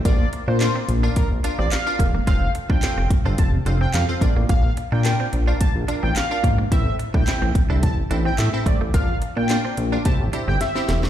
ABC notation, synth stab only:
X:1
M:4/4
L:1/16
Q:1/4=108
K:Bblyd
V:1 name="Synth stab"
[DFBdf]3 z [DFBdf]2 z [DFBdf]2 z [DFBdf]2 z [DFBdf]2 z | [CFAcf]3 z [CFAcf]2 z [CFAcf]2 z [CFAcf]2 z [CFAcf] [DFBdf]2- | [DFBdf]3 z [DFBdg]2 z [DFBdf]2 z [DFBdf]2 z [DFBdf]2 z | [CEAce]3 z [CEAce]2 z [CEAce]2 z [CEAce]2 z [CEAce]2 z |
[DFBdf]3 z [DFBdf]2 z [DFBdf] [CEGce]2 [CEGce]2 z [CEGce]2 z |]